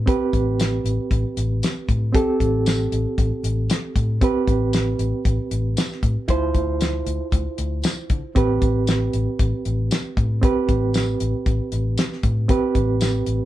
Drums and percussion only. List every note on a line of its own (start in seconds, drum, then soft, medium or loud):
0.07 kick loud
0.07 closed hi-hat medium
0.33 kick medium
0.33 closed hi-hat medium
0.60 snare loud
0.60 closed hi-hat medium
0.60 tambourine loud
0.86 closed hi-hat medium
1.11 kick medium
1.11 closed hi-hat medium
1.37 closed hi-hat medium
1.63 snare loud
1.63 closed hi-hat medium
1.63 tambourine loud
1.89 kick medium
1.89 closed hi-hat medium
2.15 kick loud
2.15 closed hi-hat medium
2.40 kick medium
2.40 closed hi-hat medium
2.66 snare loud
2.66 closed hi-hat medium
2.66 tambourine loud
2.92 closed hi-hat medium
3.18 kick medium
3.18 closed hi-hat medium
3.44 closed hi-hat medium
3.70 snare loud
3.70 closed hi-hat medium
3.70 tambourine loud
3.96 kick medium
3.96 closed hi-hat medium
4.21 kick loud
4.21 closed hi-hat medium
4.47 kick medium
4.47 closed hi-hat medium
4.73 snare medium
4.73 closed hi-hat medium
4.73 tambourine loud
4.99 closed hi-hat medium
5.25 kick medium
5.25 closed hi-hat medium
5.51 closed hi-hat medium
5.77 snare loud
5.77 closed hi-hat medium
5.77 tambourine loud
5.92 snare soft
6.03 kick medium
6.03 closed hi-hat medium
6.28 kick loud
6.28 closed hi-hat medium
6.55 kick medium
6.55 closed hi-hat medium
6.81 snare loud
6.81 closed hi-hat medium
6.81 tambourine loud
7.07 closed hi-hat medium
7.32 kick medium
7.32 closed hi-hat medium
7.58 closed hi-hat medium
7.84 snare loud
7.84 closed hi-hat medium
7.84 tambourine loud
8.10 kick medium
8.10 closed hi-hat medium
8.36 kick loud
8.36 closed hi-hat medium
8.62 kick medium
8.62 closed hi-hat medium
8.87 snare loud
8.87 closed hi-hat medium
8.87 tambourine loud
9.13 closed hi-hat medium
9.39 kick medium
9.39 closed hi-hat medium
9.65 closed hi-hat medium
9.91 snare loud
9.91 closed hi-hat medium
9.91 tambourine loud
10.17 kick medium
10.17 closed hi-hat medium
10.43 kick loud
10.43 closed hi-hat medium
10.69 kick medium
10.69 closed hi-hat medium
10.94 snare medium
10.94 closed hi-hat medium
10.94 tambourine loud
11.20 closed hi-hat medium
11.46 kick medium
11.46 closed hi-hat medium
11.72 closed hi-hat medium
11.98 snare loud
11.98 closed hi-hat medium
11.98 tambourine loud
12.12 snare soft
12.23 kick medium
12.23 closed hi-hat medium
12.49 kick loud
12.49 closed hi-hat medium
12.75 kick medium
12.75 closed hi-hat medium
13.01 snare medium
13.01 closed hi-hat medium
13.01 tambourine loud
13.26 closed hi-hat medium